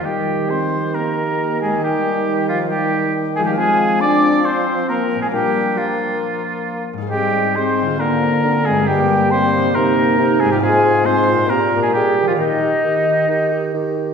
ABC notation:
X:1
M:4/4
L:1/16
Q:1/4=136
K:Eb
V:1 name="Flute"
g4 c'4 b6 a2 | g6 f2 g4 z2 a g | a4 d'4 c'4 b3 a | g4 f8- f2 z2 |
g4 c'4 b6 a2 | g4 c'4 b6 a g | a4 c'4 b3 a g3 f | e12 z4 |]
V:2 name="Oboe"
G4 c4 B6 A2 | G6 F2 G4 z2 A G | A4 d4 c4 B3 A | G4 F8- F2 z2 |
G4 c4 B6 A2 | G4 c4 B6 A G | A4 c4 B3 A G3 F | E12 z4 |]
V:3 name="Harp"
[E,B,Ge]16 | [E,B,Ge]16 | [F,A,Fc]16 | [B,,B,Fd]16 |
[A,,EAc]8 [D,FAc]8 | [G,,DGB]8 [C,EG]8 | [A,,CFc]8 [B,,EGB]4 [B,,DAB]4 | [E,EGB]16 |]
V:4 name="Clarinet"
G16 | E16 | C16 | D12- D2 z2 |
C2 C2 C2 C2 C2 C2 C2 C2 | B,2 B,2 B,2 B,2 E2 E2 E2 E2 | F2 F2 F2 F2 G2 G2 A2 A2 | G2 G2 G2 G2 G2 G2 G2 G2 |]
V:5 name="French horn section" clef=bass
G,4 C4 B,6 A,2 | G,6 F,2 G,4 z2 A, G, | A,4 D4 C4 B,3 A, | G,4 F,8- F,2 z2 |
G,4 C4 B,6 A,2 | G,4 C4 B,6 A, G, | A,4 C4 B,3 A, G,3 F, | E,12 z4 |]
V:6 name="Bassoon" clef=bass
E,16- | E,16 | F,16 | B,12- B,2 z2 |
A,4 A,4 D,4 D,4 | G,4 G,4 C,4 C,4 | A,,4 A,,4 B,,4 B,,4 | E,4 E,4 E,4 E,4 |]